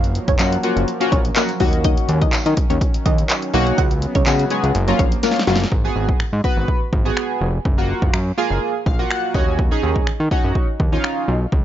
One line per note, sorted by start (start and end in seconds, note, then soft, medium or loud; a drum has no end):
0.00 0.19 F#1 loud
0.00 1.59 F3 medium
0.00 3.74 F#3 medium
0.00 1.59 A#3 medium
0.00 0.12 F4 medium
0.00 0.11 F5 loud
0.00 closed hi-hat medium
0.15 closed hi-hat medium
0.28 0.37 F#1 medium
0.28 0.62 C#4 medium
0.28 0.62 C#5 medium
0.28 kick loud
0.28 closed hi-hat medium
0.39 0.58 F#2 loud
0.39 0.54 A#3 medium
0.39 0.54 C#4 medium
0.39 0.54 F4 medium
0.39 0.54 F#4 medium
0.39 clap loud
0.39 closed hi-hat loud
0.39 tambourine medium
0.53 closed hi-hat medium
0.63 0.85 A#3 medium
0.63 0.85 C#4 medium
0.63 0.85 F4 medium
0.63 0.85 F#4 medium
0.63 closed hi-hat medium
0.76 0.85 F#1 medium
0.76 closed hi-hat medium
0.88 closed hi-hat medium
1.00 1.21 A#3 medium
1.00 1.22 C#4 medium
1.00 1.22 F4 medium
1.00 1.22 F#4 loud
1.00 closed hi-hat medium
1.12 1.31 A#1 loud
1.12 1.33 C#4 medium
1.12 1.32 C#5 medium
1.12 kick loud
1.12 closed hi-hat medium
1.25 closed hi-hat medium
1.36 1.51 A#3 medium
1.36 1.47 A#3 medium
1.36 1.51 C#4 medium
1.36 1.51 F4 medium
1.36 1.51 F#4 medium
1.36 1.47 A#4 medium
1.36 clap loud
1.36 closed hi-hat loud
1.36 tambourine medium
1.49 closed hi-hat medium
1.60 1.97 D#2 loud
1.60 3.76 D#3 medium
1.60 1.72 F#3 medium
1.60 2.38 A#3 medium
1.60 2.38 C#4 medium
1.60 3.76 C#4 medium
1.60 2.38 D#4 medium
1.60 1.71 F#4 medium
1.60 2.38 F#4 loud
1.60 kick loud
1.60 open hi-hat medium
1.73 closed hi-hat medium
1.84 2.05 D#4 medium
1.84 2.05 D#5 loud
1.84 kick loud
1.84 closed hi-hat loud
1.97 closed hi-hat medium
2.09 2.27 D#2 loud
2.09 closed hi-hat medium
2.21 2.32 D#4 medium
2.21 2.31 D#5 medium
2.21 kick loud
2.21 closed hi-hat medium
2.33 2.38 D#3 medium
2.33 clap loud
2.33 closed hi-hat loud
2.33 tambourine medium
2.46 2.54 D#3 loud
2.46 2.56 D#4 medium
2.46 2.55 D#5 medium
2.46 closed hi-hat medium
2.57 kick medium
2.57 closed hi-hat medium
2.70 2.79 D#2 loud
2.70 2.80 C#4 medium
2.70 2.79 C#5 medium
2.70 closed hi-hat medium
2.81 kick medium
2.81 closed hi-hat medium
2.94 closed hi-hat medium
3.06 3.24 D#2 loud
3.06 3.26 D#4 medium
3.06 3.26 D#5 medium
3.06 kick loud
3.06 closed hi-hat medium
3.18 closed hi-hat medium
3.30 clap loud
3.30 closed hi-hat loud
3.30 tambourine medium
3.42 closed hi-hat medium
3.54 3.72 B1 medium
3.54 3.78 A#3 loud
3.54 3.78 C#4 medium
3.54 3.78 D#4 medium
3.54 3.78 F#4 loud
3.54 open hi-hat medium
3.67 closed hi-hat medium
3.78 4.06 C#2 loud
3.78 4.74 C#3 medium
3.78 5.70 F#3 medium
3.78 4.74 B3 medium
3.78 3.99 F#4 medium
3.78 3.98 F#5 loud
3.78 kick loud
3.78 closed hi-hat loud
3.91 closed hi-hat medium
4.02 closed hi-hat medium
4.15 4.24 C#2 loud
4.15 4.49 C#4 medium
4.15 4.49 C#5 medium
4.15 kick loud
4.15 closed hi-hat medium
4.26 4.45 C#3 loud
4.26 4.41 G#3 medium
4.26 4.41 B3 medium
4.26 4.41 C#4 medium
4.26 4.41 F#4 medium
4.26 clap loud
4.26 closed hi-hat loud
4.26 tambourine medium
4.39 closed hi-hat medium
4.50 4.72 G#3 medium
4.50 4.72 B3 medium
4.50 4.72 C#4 medium
4.50 4.72 G#4 medium
4.50 closed hi-hat medium
4.64 4.72 C#2 medium
4.64 closed hi-hat medium
4.75 4.93 F#1 loud
4.75 5.71 F3 medium
4.75 5.71 A#3 medium
4.75 closed hi-hat medium
4.88 5.09 F#3 medium
4.88 5.09 A#3 medium
4.88 5.09 C#4 medium
4.88 5.09 F4 loud
4.88 closed hi-hat medium
4.99 5.18 A#1 loud
4.99 5.20 C#4 medium
4.99 5.19 C#5 medium
4.99 kick loud
4.99 closed hi-hat medium
5.12 closed hi-hat medium
5.23 5.38 F#3 medium
5.23 5.38 A#3 medium
5.23 5.34 A#3 medium
5.23 5.38 C#4 medium
5.23 5.38 F4 medium
5.23 5.34 A#4 medium
5.23 snare medium
5.23 closed hi-hat loud
5.23 tambourine medium
5.31 snare medium
5.36 snare medium
5.36 closed hi-hat medium
5.47 5.66 F#1 loud
5.47 5.62 F#3 medium
5.47 5.59 F#3 medium
5.47 5.62 A#3 medium
5.47 5.62 C#4 medium
5.47 5.62 F4 medium
5.47 5.58 F#4 medium
5.47 snare medium
5.47 open hi-hat medium
5.56 snare loud
5.60 snare loud
5.60 closed hi-hat medium
5.72 5.90 G#1 loud
5.72 kick loud
5.84 6.19 B3 medium
5.84 6.19 F#4 medium
5.84 6.19 G#4 loud
5.96 6.14 G#1 loud
6.09 kick loud
6.20 6.25 G#2 soft
6.20 finger snap loud
6.33 6.41 G#2 medium
6.44 6.80 B3 medium
6.44 6.80 F#4 medium
6.44 6.80 B4 loud
6.44 kick medium
6.57 6.66 G#1 medium
6.68 kick medium
6.93 7.11 G#1 loud
6.93 kick loud
7.05 7.47 B3 medium
7.05 7.47 F#4 medium
7.05 7.47 G#4 loud
7.17 finger snap loud
7.41 7.59 F1 medium
7.65 7.93 F#1 loud
7.65 kick loud
7.78 8.12 A#3 medium
7.78 8.13 F4 medium
7.78 8.13 F#4 loud
8.02 8.11 F#1 medium
8.02 kick loud
8.14 8.32 F#2 loud
8.14 finger snap loud
8.38 8.74 A#3 loud
8.38 8.74 F4 medium
8.38 8.74 G#4 loud
8.51 8.59 F#1 medium
8.86 9.05 A#1 medium
8.86 9.09 F5 medium
8.86 kick loud
8.99 9.34 A#3 medium
8.99 9.35 F4 medium
8.99 9.34 F#4 loud
9.10 9.33 F#5 medium
9.10 finger snap loud
9.34 9.71 D#2 loud
9.34 9.64 C#4 medium
9.34 9.64 D#4 medium
9.34 9.64 F#4 loud
9.34 9.57 G#5 medium
9.34 kick loud
9.59 kick loud
9.71 10.06 C#4 medium
9.71 10.06 D#4 medium
9.71 10.06 G#4 loud
9.83 10.01 D#2 loud
9.96 kick loud
10.07 10.12 D#3 soft
10.07 finger snap loud
10.20 10.29 D#3 medium
10.31 10.67 C#4 medium
10.31 10.67 D#4 medium
10.31 10.67 F#4 loud
10.31 kick medium
10.44 10.53 F#2 loud
10.55 kick medium
10.80 10.98 D#2 medium
10.80 kick loud
10.92 11.34 C#4 medium
10.92 11.34 D#4 medium
10.92 11.35 F4 loud
11.04 finger snap loud
11.28 11.47 B1 loud
11.52 11.65 C#2 loud
11.52 kick loud